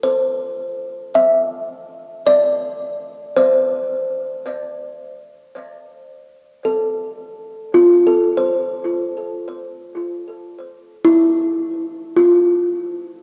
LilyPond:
\new Staff \with { instrumentName = "Kalimba" } { \time 3/4 \key c \mixolydian \tempo 4 = 54 <f' a' c''>4 e''4 d''4 | c''2. | a'4 f'16 a'16 c''4.~ | c''4 e'4 f'4 | }